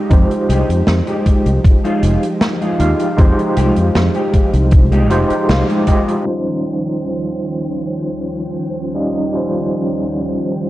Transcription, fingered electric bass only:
0.11 0.23 F2 loud
0.49 0.62 C2 medium
0.69 0.81 F2 medium
0.87 1.00 F2 medium
1.46 1.58 C2 medium
2.03 2.15 F1 medium
2.80 2.92 D#2 medium
3.18 3.31 F2 medium
3.57 3.69 C2 medium
3.77 3.88 F2 medium
3.95 4.08 F2 medium
4.54 5.10 C2 medium
5.10 5.23 F1 medium
5.30 muted fingered electric bass stroke soft
5.49 5.62 C2 medium

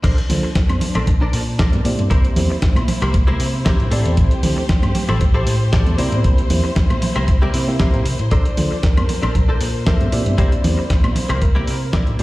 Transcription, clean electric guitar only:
0.03 0.18 D4 loud
0.03 0.18 A4 medium
0.03 0.18 A#4 loud
0.03 0.18 C5 loud
0.30 muted clean electric guitar stroke soft
0.43 muted clean electric guitar stroke medium
0.55 muted clean electric guitar stroke soft
0.69 muted clean electric guitar stroke soft
0.95 1.07 D4 medium
0.95 1.07 A4 medium
0.95 1.08 A#4 medium
0.95 1.08 C5 medium
1.21 1.40 D4 loud
1.21 1.40 A4 loud
1.21 1.41 A#4 loud
1.21 1.41 D5 loud
1.59 1.85 D4 medium
1.59 1.85 A4 medium
1.59 1.85 A#4 medium
1.59 1.85 D5 medium
2.10 2.24 E4 loud
2.10 2.25 G4 loud
2.10 2.25 A#4 loud
2.10 2.25 C5 loud
2.36 muted clean electric guitar stroke soft
2.50 muted clean electric guitar stroke medium
2.62 muted clean electric guitar stroke soft
2.76 muted clean electric guitar stroke soft
3.02 3.14 E4 medium
3.02 3.14 G4 medium
3.02 3.14 A#4 medium
3.02 3.15 C5 loud
3.27 3.47 E4 loud
3.27 3.47 G4 loud
3.27 3.47 A#4 medium
3.27 3.47 C5 loud
3.65 3.89 E4 medium
3.65 3.90 G4 medium
3.65 3.91 A#4 medium
3.65 3.91 C5 medium
3.91 4.33 E4 loud
3.91 4.34 G4 medium
3.91 4.34 A4 medium
3.91 4.34 C5 loud
4.42 muted clean electric guitar stroke soft
4.57 muted clean electric guitar stroke medium
4.69 muted clean electric guitar stroke soft
4.83 muted clean electric guitar stroke soft
5.09 5.21 E4 medium
5.09 5.21 G4 medium
5.09 5.21 A4 medium
5.09 5.21 C5 loud
5.34 5.54 E4 loud
5.34 5.54 G4 loud
5.34 5.54 A4 loud
5.34 5.54 C5 loud
5.72 5.97 E4 medium
5.72 5.97 G4 medium
5.72 5.98 A4 medium
5.72 5.99 D5 loud
5.98 6.40 E4 loud
5.98 6.41 G4 medium
5.98 6.41 A#4 medium
5.98 6.41 C5 loud
6.50 muted clean electric guitar stroke soft
6.64 muted clean electric guitar stroke medium
6.76 muted clean electric guitar stroke soft
6.90 muted clean electric guitar stroke soft
7.16 7.28 E4 medium
7.16 7.28 G4 medium
7.16 7.28 A#4 medium
7.16 7.28 C5 loud
7.42 7.61 E4 loud
7.42 7.61 G4 loud
7.42 7.61 A#4 loud
7.42 7.61 D5 loud
7.79 8.05 E4 medium
7.79 8.06 G4 medium
7.79 8.06 A#4 medium
7.79 8.06 C5 medium
8.31 8.45 D4 loud
8.31 8.46 A4 loud
8.31 8.46 A#4 medium
8.31 8.46 C5 loud
8.57 muted clean electric guitar stroke soft
8.71 muted clean electric guitar stroke medium
8.83 muted clean electric guitar stroke soft
8.97 muted clean electric guitar stroke soft
9.22 9.35 D4 medium
9.22 9.35 A4 medium
9.22 9.35 A#4 medium
9.22 9.35 C5 medium
9.48 9.68 D4 loud
9.48 9.68 A4 loud
9.48 9.68 A#4 medium
9.48 9.68 C5 loud
9.86 10.12 D4 medium
9.86 10.13 A4 medium
9.86 10.13 A#4 medium
9.86 10.13 C5 loud
10.38 10.52 E4 loud
10.38 10.52 G4 loud
10.38 10.53 A#4 medium
10.38 10.53 C5 loud
10.63 muted clean electric guitar stroke soft
10.78 muted clean electric guitar stroke medium
10.90 muted clean electric guitar stroke soft
11.03 muted clean electric guitar stroke soft
11.29 11.41 E4 medium
11.29 11.42 G4 medium
11.29 11.42 A#4 medium
11.29 11.42 C5 loud
11.55 11.74 E4 loud
11.55 11.75 G4 loud
11.55 11.75 A#4 loud
11.55 11.75 D5 loud
11.93 12.18 E4 medium
11.93 12.18 G4 medium
11.93 12.19 A#4 medium
11.93 12.20 D5 medium
12.19 12.23 E4 medium
12.19 12.23 G4 loud
12.19 12.23 A4 medium

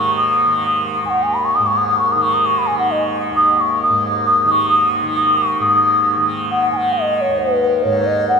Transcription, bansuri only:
0.00 0.16 C#6 medium
0.16 0.81 D#6 medium
1.05 1.11 G#5 medium
1.10 1.24 F#5 medium
1.23 1.36 G#5 medium
1.34 1.47 B5 medium
1.45 1.57 C#6 medium
1.55 1.68 D#6 loud
1.67 1.78 C#6 medium
1.77 1.87 D#6 medium
1.88 1.98 D#6 medium
1.99 2.14 C#6 medium
2.12 2.24 D#6 medium
2.23 2.35 C#6 medium
2.34 2.47 D#6 medium
2.46 2.60 C#6 medium
2.58 2.68 B5 medium
2.67 2.78 G#5 medium
2.79 2.93 F#5 medium
2.91 3.02 D#5 medium
3.36 3.62 D#6 loud
3.60 3.82 C#6 medium
3.83 4.03 D#6 medium
4.26 4.48 D#6 loud
4.48 4.69 C#6 medium
4.48 4.52 D#6 medium
4.69 4.91 D#6 medium
5.16 5.39 D#6 medium
5.37 5.60 C#6 medium
5.61 6.24 D#6 medium
6.51 6.71 F#5 medium
6.72 6.78 G#5 medium
6.77 6.95 F#5 medium
6.93 7.17 D#5 medium
7.17 7.22 D#5 medium
7.21 7.41 C#5 medium
7.39 7.85 B4 medium
7.83 8.08 C#5 medium
8.06 8.28 D#5 medium
8.28 8.40 F#5 loud

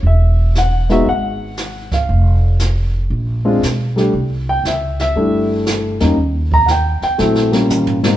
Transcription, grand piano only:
0.07 0.53 E5 medium
0.58 0.90 F#5 medium
0.89 1.05 G#3 medium
0.89 1.05 B3 medium
0.89 1.05 D#4 medium
0.89 1.05 F#4 medium
0.89 1.07 E5 medium
1.09 1.89 F#5 medium
1.94 2.57 F5 medium
3.45 3.60 G#3 medium
3.45 3.60 C4 medium
3.45 3.60 D4 medium
3.45 3.60 F4 medium
3.96 4.11 G3 medium
3.96 4.11 A3 soft
3.96 4.12 D4 medium
3.96 4.12 G4 medium
4.49 4.65 G5 medium
4.67 4.99 E5 medium
5.01 5.47 E5 medium
5.16 5.94 G3 medium
5.16 5.94 A3 medium
5.16 5.94 D4 soft
5.16 5.94 E4 medium
6.00 6.16 G3 medium
6.00 6.16 A#3 medium
6.00 6.16 C#4 soft
6.00 6.16 D#4 medium
6.54 6.69 A#5 medium
6.66 6.70 F#5 medium
6.71 7.02 G5 medium
7.03 7.50 G5 medium
7.18 7.49 F#3 medium
7.18 7.50 A3 medium
7.18 7.50 C4 medium
7.18 7.50 E4 medium
7.52 7.97 G3 medium
7.52 7.97 A#3 medium
7.52 7.97 C#4 soft
7.52 7.97 F4 medium
8.03 8.17 G#2 soft
8.03 8.17 G3 soft
8.03 8.17 A#3 soft
8.03 8.17 C4 soft
8.03 8.17 D#4 medium

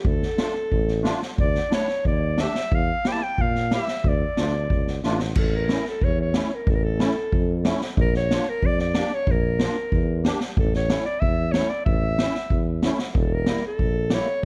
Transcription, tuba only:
0.05 0.25 D2 medium
0.72 1.12 A1 medium
1.38 1.58 D2 medium
2.05 2.45 D#2 medium
2.72 2.92 E2 medium
3.38 3.78 A#2 medium
4.04 4.24 D2 medium
4.37 4.67 D2 medium
4.70 5.00 C#2 medium
5.04 5.33 A1 medium
5.36 5.75 A1 medium
6.02 6.41 E2 medium
6.67 7.06 A1 medium
7.33 7.72 F2 medium
7.98 8.37 A#1 loud
8.62 9.01 F2 medium
9.28 9.66 A#1 medium
9.92 10.31 E2 medium
10.57 10.96 A1 medium
11.22 11.60 E2 medium
11.87 12.25 A1 medium
12.51 12.89 E2 medium
13.15 13.54 E1 medium
13.80 14.18 A#1 medium

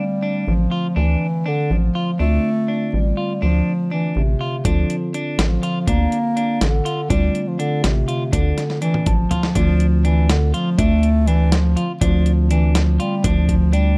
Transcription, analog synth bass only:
0.48 0.67 A1 medium
0.97 1.16 D2 medium
1.70 1.90 A1 loud
2.20 2.39 D2 medium
2.93 3.13 A1 medium
3.43 3.62 D2 medium
4.16 4.35 A1 loud
4.65 4.84 D2 medium
5.38 5.58 A1 medium
5.87 6.07 D2 medium
6.61 6.81 A1 loud
7.10 7.30 D2 medium
7.84 8.03 A1 medium
8.33 8.52 D2 medium
9.07 9.26 A1 medium
9.56 10.53 D2 loud
10.79 11.75 D2 medium
12.01 12.98 D2 loud
13.24 13.98 D2 medium

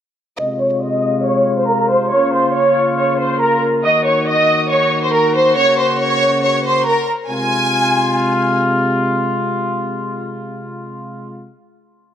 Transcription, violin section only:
0.39 0.58 D#5 loud
0.39 0.59 D#6 medium
0.61 0.80 C#5 medium
0.61 0.80 C#6 medium
0.82 1.23 D#5 medium
0.82 1.23 D#6 medium
1.25 1.56 C#5 medium
1.25 1.56 C#6 medium
1.58 1.67 C5 medium
1.58 1.68 C6 medium
1.68 1.88 A#4 medium
1.68 1.88 A#5 medium
1.90 2.09 C5 medium
1.90 2.10 C6 medium
2.11 2.31 C#5 loud
2.11 2.31 C#6 medium
2.33 2.52 C5 medium
2.33 2.53 C6 medium
2.55 2.95 C#5 medium
2.55 2.96 C#6 medium
2.98 3.17 C#5 medium
2.98 3.18 C#6 medium
3.19 3.39 C5 medium
3.19 3.39 C6 medium
3.41 3.60 A#4 medium
3.41 3.61 A#5 medium
3.84 4.04 D#5 medium
3.84 4.04 D#6 medium
4.06 4.25 C#5 medium
4.06 4.26 C#6 medium
4.27 4.68 D#5 medium
4.27 4.68 D#6 medium
4.70 5.01 C#5 medium
4.70 5.01 C#6 medium
5.03 5.12 C5 medium
5.03 5.13 C6 medium
5.13 5.33 A#4 medium
5.13 5.33 A#5 medium
5.35 5.55 C5 medium
5.35 5.55 C6 medium
5.57 5.76 C#5 loud
5.57 5.77 C#6 medium
5.79 5.98 C5 medium
5.79 5.98 C6 medium
6.00 6.41 C#5 medium
6.00 6.41 C#6 medium
6.43 6.63 C#5 medium
6.43 6.63 C#6 medium
6.65 6.84 C5 medium
6.65 6.85 C6 medium
6.86 7.06 A#4 medium
6.86 7.06 A#5 medium
7.29 8.55 G#5 medium

